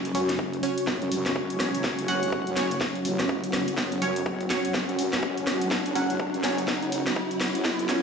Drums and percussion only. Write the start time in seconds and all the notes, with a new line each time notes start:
0.05 closed hi-hat
0.15 open hi-hat
0.29 snare, closed hi-hat
0.39 kick
0.53 closed hi-hat
0.63 open hi-hat
0.78 closed hi-hat
0.87 kick, snare
1.02 closed hi-hat
1.12 open hi-hat
1.26 cross-stick, snare, closed hi-hat
1.36 kick
1.50 closed hi-hat
1.60 cross-stick, snare, open hi-hat
1.75 closed hi-hat
1.84 kick, snare
1.99 closed hi-hat
2.08 open hi-hat
2.23 closed hi-hat
2.32 kick
2.47 closed hi-hat
2.57 snare, open hi-hat
2.71 closed hi-hat
2.81 kick, snare
2.95 closed hi-hat
3.05 open hi-hat
3.19 cross-stick, snare, closed hi-hat
3.29 kick
3.44 closed hi-hat
3.53 cross-stick, snare, open hi-hat
3.68 closed hi-hat
3.78 kick, snare
3.92 closed hi-hat
4.02 open hi-hat
4.16 closed hi-hat
4.26 kick
4.41 closed hi-hat
4.50 snare, open hi-hat
4.65 closed hi-hat
4.74 kick, snare
4.89 closed hi-hat
4.99 open hi-hat
5.13 cross-stick, snare, closed hi-hat
5.23 kick
5.37 closed hi-hat
5.47 cross-stick, snare, open hi-hat
5.61 closed hi-hat
5.71 kick, snare
5.86 closed hi-hat
5.95 open hi-hat
6.10 closed hi-hat
6.20 kick
6.34 closed hi-hat
6.44 snare, open hi-hat
6.58 closed hi-hat
6.68 kick, snare
6.83 closed hi-hat
6.92 open hi-hat
7.07 cross-stick, snare, closed hi-hat
7.16 kick
7.31 closed hi-hat
7.41 cross-stick, snare, open hi-hat
7.55 closed hi-hat
7.65 kick, snare, shaker
7.79 closed hi-hat, shaker
7.89 snare, open hi-hat, shaker